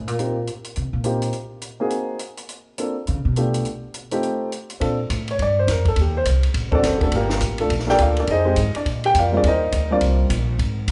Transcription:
0.07 A#2, closed hi-hat
0.19 A#3 C4 D#4 F4 G4, closed hi-hat
0.47 closed hi-hat
0.64 closed hi-hat
0.76 C3, closed hi-hat
0.93 A#2
1.04 A#3 C4 D#4 F4 G4, closed hi-hat
1.22 closed hi-hat
1.33 closed hi-hat
1.62 closed hi-hat
1.80 A#3 C4 D#4 F#4 G#4
1.90 closed hi-hat
2.19 closed hi-hat
2.37 closed hi-hat
2.49 closed hi-hat
2.78 A#3 C4 D4 F4 A4, closed hi-hat
3.07 C#3, closed hi-hat
3.25 B2
3.36 A3 B3 D4 F4 G4, closed hi-hat
3.54 closed hi-hat
3.65 closed hi-hat
3.94 closed hi-hat
4.11 A3 C4 D#4 F4 G4, closed hi-hat
4.23 closed hi-hat
4.52 closed hi-hat
4.70 closed hi-hat
4.80 A#2 C4 D4 F4 A4, kick, ride
5.10 A2, kick, hi-hat pedal, ride
5.28 C#5, ride
5.39 G2 D5, kick, ride
5.59 C5
5.67 F2 A#4, kick, snare, hi-hat pedal, ride
5.85 A4, kick, ride
5.96 D#2, kick, ride
6.01 G4
6.17 C5
6.25 C2, kick, hi-hat pedal, ride
6.43 ride
6.54 A1, kick, ride
6.71 C4 D4 F#4 A4 D5, kick
6.76 D4 F#4 A4
6.83 F#1 C4 F#4 A4 C5, kick, snare, hi-hat pedal, ride
6.98 G#4, kick, ride
7.03 A3 D4 F#4 A4
7.12 G1 A#3 A#4, ride
7.16 F4 G4
7.30 snare
7.41 A1, kick, hi-hat pedal, ride
7.58 A3 D4 F4 A4, ride
7.70 A#1, kick, ride
7.79 snare
7.87 A#3 D4 F4 G4 A4 A#4 D5 G5, snare
7.98 D2 F4 A#4 D5 F5, kick, hi-hat pedal, ride
8.17 D4 A4 A#4 D5, ride
8.27 F2 D#5, kick, ride
8.31 D#4 G#4 C5
8.45 G#3 C4 D#4 G4
8.56 G#2, kick, hi-hat pedal, ride
8.75 D4 D5, muted upright bass stroke, ride
8.86 A#2, kick, ride
9.04 G4 G5, ride
9.14 F2, kick, hi-hat pedal, ride
9.19 F4 A#4 D5 F5
9.32 G3 A#3 C4 F4
9.37 D4 G#4 A#4 D5
9.43 D#2 A#4, kick, ride
9.47 D#4 C5 D#5
9.72 D2, kick, hi-hat pedal, ride
9.91 G3 A#3 C4 D4 F4 D5
10.01 C2, kick, ride
10.30 A#1, kick, hi-hat pedal, ride
10.59 G#1, kick, ride
10.88 D#2, kick, hi-hat pedal, ride

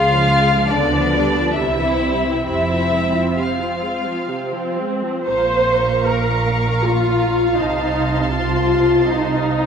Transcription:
Already playing: C#2 C#3 G#3 F4 F5
0.11 F3
0.32 C#3
0.53 F3
0.72 D2 D3 B3 D4 D5
0.95 F3
1.16 G3
1.37 F3
1.56 C2 C3 C4 E4 E5
1.79 E3
2.01 G3
2.24 E3
2.45 F1 F2 C3 E4 E5
2.70 F3
2.91 G#3
3.13 F3
3.36 C3 F4 F5
3.59 F3
3.81 G#3
4.04 F3
4.27 C3 C4
4.52 F3
4.78 G#3
5.02 F3
5.26 A#1 A#2 C5 F5 A#5 C#6
6.06 A#4
6.83 F4
7.58 C2 C3 D#4 A5 C6
8.33 F4
9.08 D#4

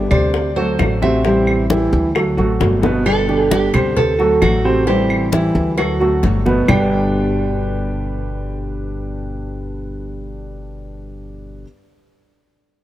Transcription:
Already playing: D3 G3 B3 G4
0.11 D2 C3 C5 D5, high conga, low conga, claves
0.34 muted nylon-string guitar stroke, high bongo, high conga
0.56 F#3 A3 C4 F#4 A4 C5, high conga
0.79 A1 D3 A3 C4 F#4, high bongo, low bongo, high conga, claves
1.02 C3 A3 C4 F#4 C5 E5, high conga
1.24 C3 E3 G3 C4 E4 C5, high bongo, high conga
1.47 high bongo, high conga, claves
1.70 E3 G3 C4 E4 G4, high bongo, high conga
1.93 D2, high conga
2.15 F#3 F#4 A4, muted nylon-string guitar stroke, high bongo, high conga, claves
2.37 A1 F#3 A3 C4 F#4 A4, high bongo, high conga
2.60 G1 D3 A3 C4 F#4, high bongo, low bongo, high conga
2.82 B2 A3 B3 C4 F#4 B4, high bongo, high conga
3.05 B2 D3 G3 B3 G4 A4, cowbell, high conga, claves
3.29 D3 D4 G4, high conga
3.50 D3 G3 B3 G4, cowbell, high conga
3.74 D2 C3 C5, cowbell, high conga, low conga, claves
3.96 A4, muted nylon-string guitar stroke, cowbell, high conga, low conga
4.19 F#3 A3 C4 F#4 A4, high conga
4.41 A1 D3 A3 C4 F#4, cowbell, high conga, claves
4.64 C3 A3 C4 F#4 C5
4.87 C3 E3 G3 C4 E4 G4 C5, cowbell, high conga
5.10 high conga, claves
5.32 E3 G3 C4 E4 G4, cowbell, high conga
5.55 D2, high conga
5.77 F#3 F#4 A4, muted nylon-string guitar stroke, cowbell, high conga, claves
6.00 F#3 A3 C4 F#4 A4, high conga
6.23 G1 D3 A3 C4 F#4, cowbell, high conga
6.45 B2 A3 B3 C4 F#4 B4, high conga
6.67 G1 G2 B2 D3 G3 B3 D4 G4 B4 D5 G5, low bongo, low conga, claves

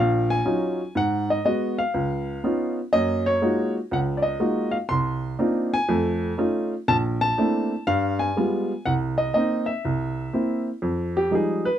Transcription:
Already playing: A#1 A#2 F5
0.30 G#5
0.45 F#3 C#4 D#4 F4
0.95 G#2 F#5
1.30 D#5
1.45 G#3 B3 F#4 D#5
1.78 F5
1.94 C#2
2.44 B3 C#4 D#4 F4
2.93 F#2 A#3 D#5
3.26 C#5
3.41 G#3 A#3 D#4 F4 F#4
3.91 C#2 F#5
4.17 D5
4.22 D#5
4.40 G#3 A#3 D#4 F4 F#4
4.71 F5
4.89 C2 C6
5.39 A#3 C4 D4 D#4 F4
5.74 G#5
5.89 F2 A3
6.38 A3 C#4 D#4 F4
6.88 A#1 A5
7.21 A5
7.38 A3 A#3 C4 D4 E4
7.87 G2 F5
8.19 G#5
8.37 G3 G#3 B3 F4
8.86 C2 F#5
9.18 D#5
9.34 A#3 C4 D#4 D#5
9.66 E5
9.85 C2
10.33 A#3 C4 E4
10.82 F2
11.17 G4
11.31 F3 G3 G#3 D#4
11.35 G#4
11.65 B4

